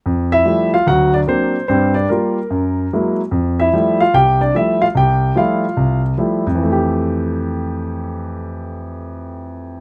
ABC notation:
X:1
M:4/4
L:1/8
Q:"Swing" 1/4=147
K:F
V:1 name="Grand piano"
z [Ee]2 [Ff] [^F^f] [Dd] c2 | [Cc] [Dd] B4- B z | z [Ee]2 [Ff] [Gg] [Dd] e [Ff] | [Gg]2 [Ff]3 z3 |
[F,,E,A,G]8- | [F,,E,A,G]8 |]
V:2 name="Grand piano" clef=bass
F,,2 [F,G,A,E] z [D,,^F,]2 [F,^A,CD] z | [G,,G,]2 [G,B,F] z _G,,2 [_G,_A,B,_F] z | F,,2 [F,G,A,E] z C,,2 [F,G,A,E] z | C,,2 [F,G,A,E] z C,,2 [F,G,A,E] z |
z8 | z8 |]